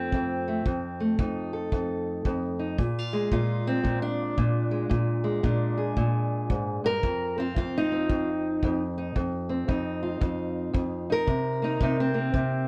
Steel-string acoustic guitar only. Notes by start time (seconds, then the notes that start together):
Already playing: F2 A3 C4
0.14 F2
0.48 A3
0.66 F2
1.00 A3
1.19 F2 D#4
1.53 A4
1.73 F2
2.26 F2
2.59 D#4
2.78 A#2 G#4
2.98 F4
3.13 G#3
3.32 A#2 F4
3.67 C4
3.84 A#2
4.02 D4
4.38 A#2
4.71 G#3
4.89 A#2
5.24 G#3
5.43 A#2 D4
5.78 G#4
5.97 A#2
6.50 G#2
6.84 G2 A#4
7.03 F2
7.38 C4 F4
7.57 F2 F4
7.78 D#4
7.92 C4
8.10 F2
8.64 F2
8.98 D#4
9.16 F2
9.49 C4
9.68 F2 D#4
10.03 F4
10.21 F2
10.73 F2
11.10 D#4 A#4
11.27 C3
11.62 A#3 D#4
11.82 C3 D#4
12.00 C4
12.14 A#3
12.34 C3